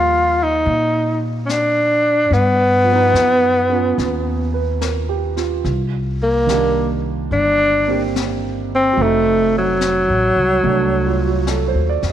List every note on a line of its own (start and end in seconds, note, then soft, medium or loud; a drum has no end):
0.00 0.62 D#2 medium
0.00 2.33 F3 soft
0.00 2.33 G3 soft
0.00 2.34 A#3 soft
0.00 0.45 F4 medium
0.00 2.34 D5 soft
0.43 1.24 D#4 medium
0.66 2.28 A#2 medium
0.66 brush sweep soft
1.46 1.52 C#4 medium
1.46 snare soft
1.46 hi-hat pedal soft
1.51 2.35 D4 medium
2.31 3.10 G2 medium
2.31 4.82 B3 medium
2.31 brush sweep soft
2.31 snare soft
2.84 5.62 F3 soft
2.92 3.68 B3 soft
2.92 5.68 D#4 soft
3.14 3.93 F#2 medium
3.14 snare soft
3.14 hi-hat pedal soft
3.70 5.64 B3 soft
3.70 5.65 C#4 soft
3.70 5.35 F4 soft
3.98 5.60 D#2 medium
3.98 brush sweep soft
3.98 snare soft
4.54 4.97 B4 soft
4.81 5.34 A#4 soft
4.81 snare soft
4.81 hi-hat pedal soft
5.09 5.52 G4 soft
5.36 5.80 F4 soft
5.36 snare soft
5.65 7.27 C2 medium
5.65 brush sweep soft
5.65 snare soft
6.23 7.01 A#3 medium
6.47 8.97 D#3 soft
6.47 8.98 G3 soft
6.47 7.86 A#3 soft
6.47 snare soft
6.47 hi-hat pedal soft
6.52 8.99 D4 soft
7.31 8.93 G1 medium
7.31 8.11 D4 medium
7.31 brush sweep soft
7.88 8.97 A#3 soft
7.88 8.98 C4 soft
7.88 8.99 G4 soft
8.16 snare soft
8.16 hi-hat pedal soft
8.75 9.04 C4 medium
8.93 12.12 F#3 soft
8.97 10.04 F1 medium
8.97 10.62 A3 soft
8.97 12.12 C4 soft
8.97 brush sweep soft
9.02 9.56 A3 medium
9.02 12.12 D#4 soft
9.58 12.01 F#3 medium
9.81 snare soft
9.81 hi-hat pedal medium
10.08 10.34 A1 soft
10.36 10.62 C2 soft
10.64 11.70 C2 medium
10.64 12.12 A3 soft
10.64 12.12 D4 soft
10.64 brush sweep soft
11.06 11.31 F4 soft
11.27 11.55 F#4 soft
11.47 11.87 A4 soft
11.47 snare soft
11.47 hi-hat pedal soft
11.68 12.03 C5 soft
11.74 12.00 D#2 medium
11.89 12.12 D5 soft
12.02 12.12 F2 medium
12.02 snare soft